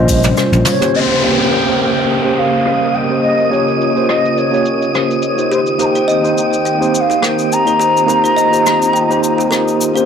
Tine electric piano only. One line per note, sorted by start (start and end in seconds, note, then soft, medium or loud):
0.00 0.33 G3 loud
0.00 0.34 C#4 medium
0.00 0.34 F4 medium
0.00 0.34 C5 loud
0.35 0.77 G3 medium
0.35 0.77 C#4 medium
0.35 0.78 F4 medium
0.35 0.78 C5 medium
0.79 1.19 A#3 medium
0.79 1.19 C#4 medium
0.79 1.20 G4 medium
0.79 1.20 C5 medium
1.21 1.62 A#3 medium
1.21 1.63 C#4 medium
1.21 1.63 G4 medium
1.21 1.64 C5 medium
1.65 2.20 A#3 medium
1.65 2.20 C#4 medium
1.65 2.20 G4 medium
1.65 2.21 C5 medium
2.23 2.62 A#3 medium
2.23 2.62 C#4 medium
2.23 2.63 G4 medium
2.23 2.63 C5 medium
2.65 3.06 A#3 medium
2.65 3.06 C#4 medium
2.65 3.07 G4 medium
2.65 3.07 C5 medium
3.09 3.48 A#3 medium
3.09 3.48 C#4 medium
3.09 3.48 G4 medium
3.09 3.49 C5 medium
3.50 3.91 A#3 medium
3.50 3.92 C#4 medium
3.50 3.92 G4 medium
3.50 3.93 C#5 medium
3.94 4.48 A#3 medium
3.94 4.49 C#4 medium
3.94 4.49 G4 medium
3.94 4.50 C5 medium
4.51 4.90 A#3 medium
4.51 4.91 C#4 medium
4.51 4.91 G4 medium
4.51 4.92 C#5 medium
4.92 5.34 A#3 medium
4.92 5.34 C#4 medium
4.92 5.35 G4 medium
4.92 5.35 C5 medium
5.36 5.76 A#3 medium
5.36 5.76 D#4 medium
5.36 5.77 G4 medium
5.36 5.77 C5 medium
5.78 6.20 A#3 medium
5.78 6.20 D#4 medium
5.78 6.20 G4 medium
5.78 6.21 C5 medium
6.22 6.76 A#3 medium
6.22 6.77 D#4 medium
6.22 6.77 G4 medium
6.22 6.78 C5 medium
6.79 7.18 A#3 medium
6.79 7.19 D#4 medium
6.79 7.19 G4 medium
6.79 7.20 C5 medium
7.21 7.62 A#3 medium
7.21 7.63 D#4 medium
7.21 7.63 G4 medium
7.21 7.64 C5 medium
7.65 8.04 A#3 medium
7.65 8.05 D#4 medium
7.65 8.05 G4 medium
7.65 8.06 C5 medium
8.06 8.48 A#3 medium
8.06 8.48 D#4 medium
8.06 8.49 G4 medium
8.06 8.49 C5 medium
8.51 9.05 A#3 medium
8.51 9.06 D#4 medium
8.51 9.06 G4 medium
8.51 9.07 C5 medium
9.09 9.48 A#3 medium
9.09 9.48 D#4 medium
9.09 9.48 G4 medium
9.09 9.49 C5 loud
9.50 9.91 A#3 medium
9.50 9.92 D#4 medium
9.50 9.92 G4 medium
9.50 9.93 C5 medium
9.94 10.05 A#3 medium
9.94 10.05 C#4 medium
9.94 10.05 G4 medium
9.94 10.05 C5 medium